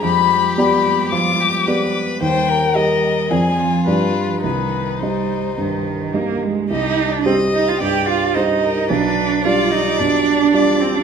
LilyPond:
<<
  \new Staff \with { instrumentName = "Violin" } { \time 4/4 \key c \minor \tempo 4 = 109 b''4 b''4 d'''4. r8 | g''4 ees''4 aes''4 b'4 | b'4 c''2 r4 | ees''8. d''16 c''8 ees''16 f''16 g''8 f''8 ees''4 |
d''4 f''8 ees''8 d''4. c''16 d''16 | }
  \new Staff \with { instrumentName = "Violin" } { \time 4/4 \key c \minor g'2 f'8 g'8 b'4 | c''8 bes'4. aes'8 f'4. | ees'2.~ ees'8 r8 | g'4 ees''4 d''4 c''8 bes'8 |
b'4 d''2 d''4 | }
  \new Staff \with { instrumentName = "Grand piano" } { \time 4/4 \key c \minor f,4 <b g' d''>4 f4 <b g' d''>4 | ees,4 <g' ees''>4 <f, c' f' d''>4 <g, g f' d''>4 | c,4 <g ees' ees''>4 g,4 <g ees' ees''>4 | c,4 <g g' c''>4 g,4 <g g' c''>4 |
b,,4 <g f' d''>4 b,4 <g f' d''>4 | }
  \new Staff \with { instrumentName = "Cello" } { \time 4/4 \key c \minor g1 | g4 g4 f4 f4 | ees4 g4 ees4 bes8 aes8 | ees'8. d'16 c'8 ees'16 f'16 g'8 f'8 ees'4 |
d'4 f'8 ees'8 d'4. c'16 d'16 | }
>>